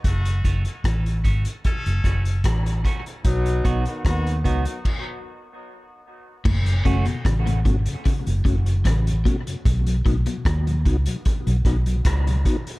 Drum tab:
CC |----------------|--------x-------|x---------------|----------------|
HH |xxxxxxxxxxxxxxxx|xxxxxxxx--------|-xxxxxxxxxxxxxxx|xxxxxxxxxxxxxxxx|
SD |----r-----r-r---|----r-----------|----r-------r---|----r-----r-r---|
BD |o-o-o-o-o-o-o-o-|o-o-o-o-o-------|o-o-o-o-o-o-o-o-|o-o-o-o-o-o-o-o-|